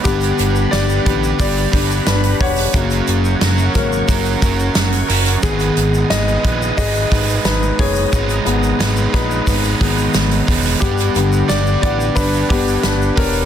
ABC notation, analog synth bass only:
X:1
M:4/4
L:1/8
Q:1/4=89
K:G#m
V:1 name="Analog synth bass" clef=bass
=G,,, G,,, G,,, =A,,, G,,, G,,, G,,, E,,, | F,,, F,,, F,,, G,,, F,,, F,,, F,,, F,,, | G,,, G,,, G,,, A,,, G,,, G,,, G,,, F,,, | G,,, G,,, G,,, A,,, G,,, G,,, G,,, E,,, |
=G,,, G,,, G,,, =A,,, G,,, G,,, G,,, E,,, |]